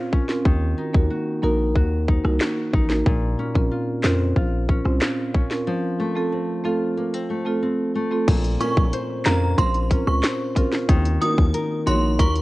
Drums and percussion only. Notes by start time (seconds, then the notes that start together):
0.13 kick
0.29 snare
0.45 kick
0.95 kick
1.76 kick
2.08 kick
2.25 cross-stick
2.41 snare, clap
2.74 kick
2.90 snare
3.06 kick
3.55 kick
4.04 snare, clap
4.36 kick
4.69 kick
4.85 cross-stick
5.01 snare, clap
5.34 kick
5.51 snare
8.28 kick, closed hi-hat, crash, high bongo
8.44 closed hi-hat
8.60 closed hi-hat, high bongo
8.77 kick, high bongo
8.93 closed hi-hat
9.25 snare, clap, closed hi-hat, high bongo, low bongo
9.58 kick, closed hi-hat, high bongo
9.75 closed hi-hat
9.91 kick, closed hi-hat
10.07 cross-stick
10.23 snare, clap, closed hi-hat
10.56 kick, closed hi-hat, low bongo
10.72 snare
10.89 kick, closed hi-hat, high bongo
11.05 closed hi-hat
11.22 closed hi-hat, high bongo
11.38 kick, high bongo
11.54 closed hi-hat
11.87 closed hi-hat, high bongo, low bongo
12.19 kick, closed hi-hat, high bongo
12.35 closed hi-hat